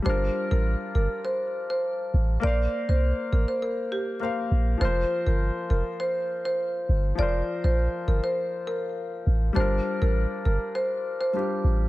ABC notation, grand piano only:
X:1
M:4/4
L:1/8
Q:1/4=101
K:Gm
V:1 name="Grand piano"
[G,DFB]8 | [B,Bcf]6 [B,Bcf]2 | [F,FBc]8 | [F,FBc]8 |
[G,DFB]6 [G,DFG]2 |]